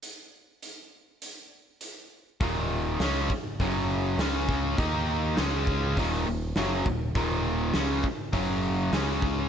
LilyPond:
<<
  \new Staff \with { instrumentName = "Overdriven electric guitar" } { \clef bass \time 4/4 \key des \lydian \tempo 4 = 101 r1 | <ees, bes, ees>4 <des aes des'>8 r8 <ges, des ges>4 <des aes des'>4 | <ees bes ees'>4 <des aes des'>4 <ees, bes, ees>8 <ees, bes,>8 <ges, des ges>8 <ees, bes,>8 | <ees, bes, ees>4 <des aes des'>8 r8 <ges, des ges>4 <des aes des'>4 | }
  \new Staff \with { instrumentName = "Picked electric bass" } { \clef bass \time 4/4 \key des \lydian r1 | ees,,4 des,8 r8 ges,,4 des,4 | ees,4 des,4 ees,,8 ees,,8 ges,,8 ees,,8 | ees,,4 des,8 r8 ges,,4 des,4 | }
  \new DrumStaff \with { instrumentName = "Drums" } \drummode { \time 4/4 hh4 hh4 hh4 hh4 | <hho bd>4 <hho sn>8 bd8 <hho bd>4 <hho sn>8 bd8 | <hho bd>4 <hho sn>8 bd8 <hho bd>4 <hho sn>8 bd8 | <hho bd>4 <hho sn>8 bd8 <hho bd>4 <hho sn>8 bd8 | }
>>